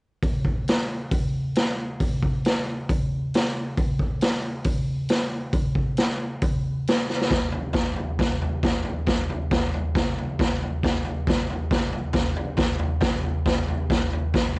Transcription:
0.23 kick loud
0.23 open hi-hat soft
0.45 kick medium
0.68 snare loud
0.68 open hi-hat soft
1.11 kick loud
1.11 open hi-hat soft
1.55 snare loud
1.55 open hi-hat soft
2.00 kick loud
2.00 open hi-hat soft
2.22 kick medium
2.45 snare loud
2.45 open hi-hat medium
2.89 kick loud
2.89 open hi-hat soft
3.34 snare loud
3.34 open hi-hat soft
3.77 kick loud
3.77 open hi-hat soft
3.99 kick medium
4.21 snare loud
4.21 open hi-hat soft
4.64 kick loud
4.64 open hi-hat medium
5.09 snare loud
5.09 open hi-hat medium
5.53 kick loud
5.53 open hi-hat soft
5.75 kick medium
5.97 snare loud
5.97 open hi-hat soft
6.42 kick loud
6.42 open hi-hat soft
6.87 snare loud
6.87 open hi-hat soft
7.10 snare medium
7.21 snare medium
7.30 kick medium
7.30 snare loud
7.30 floor tom medium
7.52 floor tom medium
7.73 kick loud
7.73 snare loud
7.73 floor tom medium
7.96 floor tom medium
8.19 kick loud
8.19 snare loud
8.19 floor tom medium
8.42 floor tom medium
8.63 kick loud
8.63 snare loud
8.63 floor tom medium
8.85 floor tom medium
9.06 kick medium
9.06 snare loud
9.06 floor tom medium
9.30 floor tom medium
9.51 kick loud
9.51 snare loud
9.51 floor tom medium
9.74 floor tom medium
9.95 kick loud
9.95 snare loud
9.95 floor tom medium
10.18 floor tom medium
10.39 kick loud
10.39 snare loud
10.39 floor tom medium
10.63 floor tom medium
10.83 kick loud
10.83 snare loud
10.83 floor tom medium
11.05 floor tom medium
11.27 kick loud
11.27 snare loud
11.27 floor tom medium
11.50 floor tom medium
11.71 kick loud
11.71 snare loud
11.71 floor tom medium
11.93 floor tom medium
12.13 kick loud
12.13 snare loud
12.13 floor tom medium
12.36 floor tom medium
12.57 kick loud
12.57 snare loud
12.57 floor tom medium
12.80 floor tom medium
13.01 kick loud
13.01 snare loud
13.01 floor tom medium
13.23 floor tom medium
13.46 kick loud
13.46 snare loud
13.46 floor tom medium
13.68 floor tom medium
13.90 kick loud
13.90 snare loud
13.90 floor tom medium
14.13 floor tom medium
14.34 kick loud
14.34 snare medium
14.34 floor tom medium

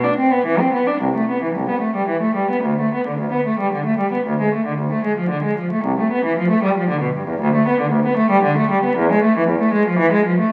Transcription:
0.04 0.18 D4 medium
0.18 0.32 C4 medium
0.32 0.46 B3 medium
0.46 0.60 E3 medium
0.60 0.74 C4 medium
0.73 0.88 B3 soft
0.87 1.01 D4 medium
1.01 1.15 C2 medium
1.16 1.29 A3 soft
1.31 1.43 B3 soft
1.43 1.56 E3 soft
1.56 1.69 C2 soft
1.70 1.83 B3 soft
1.81 1.95 A3 soft
1.96 2.09 G3 soft
2.08 2.22 E3 medium
2.22 2.36 A3 soft
2.35 2.50 G3 soft
2.51 2.65 B3 soft
2.64 2.78 D2 medium
2.81 2.93 A3 soft
2.94 3.07 B3 soft
3.07 3.20 D3 soft
3.20 3.33 D2 soft
3.32 3.45 B3 soft
3.46 3.59 A3 soft
3.59 3.72 G3 medium
3.73 3.86 D3 medium
3.86 3.99 A3 soft
3.99 4.12 G3 soft
4.12 4.25 B3 soft
4.27 4.39 D2 medium
4.41 4.53 G#3 soft
4.54 4.66 A3 soft
4.66 4.79 D3 soft
4.78 4.91 D2 soft
4.92 5.05 A3 soft
5.05 5.17 G#3 soft
5.17 5.30 F3 medium
5.30 5.43 D3 medium
5.44 5.57 G#3 soft
5.58 5.71 F3 soft
5.71 5.84 A3 medium
5.85 5.98 C2 medium
6.00 6.12 A3 soft
6.13 6.25 B3 medium
6.25 6.38 E3 medium
6.38 6.51 F3 medium
6.50 6.63 A3 medium
6.63 6.76 G3 medium
6.78 6.90 F3 medium
6.90 7.02 D3 medium
7.01 7.15 B2 medium
7.16 7.28 G2 medium
7.28 7.41 E2 medium
7.41 7.54 D2 medium
7.55 7.67 A3 medium
7.68 7.80 B3 medium
7.81 7.93 D3 medium
7.92 8.06 D2 medium
8.06 8.19 B3 medium
8.17 8.31 A3 medium
8.31 8.44 G3 medium
8.43 8.57 D3 medium
8.58 8.71 A3 medium
8.71 8.84 G3 medium
8.84 8.98 B3 medium
8.97 9.11 E2 medium
9.13 9.25 G#3 medium
9.24 9.37 A3 medium
9.38 9.50 E3 medium
9.49 9.62 E2 medium
9.61 9.75 A3 medium
9.74 9.88 G#3 medium
9.88 10.01 F3 medium
9.99 10.13 E3 medium
10.13 10.27 G#3 medium
10.26 10.40 F3 medium
10.39 10.52 A3 medium

